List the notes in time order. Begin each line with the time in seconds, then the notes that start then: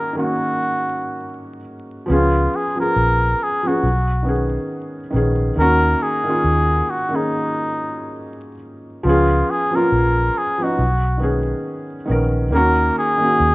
Already playing: D#3 A#3 C#4 F#4 G#4 A#4
0.13 D#3 A#3
0.17 C#4 F#4
2.06 C#2 F3 B3 C#4
2.11 F4 G#4
2.56 G#4
2.75 F3 B3 C#4
2.80 G#4 A#4
2.96 A#1
3.43 G#4
3.63 F3 B3 C#4
3.68 F#4 G#4
3.83 B1
4.23 D#3 B3 C#4
4.29 G#4
5.11 A#1 D#3 B3 C#4
5.16 G#4
5.56 D#2 D#3 A#3 A#4
5.60 C#4 F#4
6.03 G#4
6.24 D#3 A#3 C#4
6.30 F4
6.44 D#2
6.90 F#4
7.09 D#3 A#3 C#4
7.15 D#4 G#4
9.03 C#2 F3 B3 C#4 F4
9.09 G#4
9.51 G#4
9.70 F3 B3 C#4
9.76 F4 A#4
9.92 A#1
10.38 G#4
10.58 F3 B3 C#4
10.63 D#4 F#4
10.79 B1
11.18 D#3 B3
11.22 C#4 G#4
12.05 A#1 D#3 B3 C#4
12.11 A#4
12.50 D#2 D#3 A#3 C#4
12.55 F#4 A#4
12.99 G#4
13.17 D#3 A#3 C#4
13.23 F#4
13.40 D#2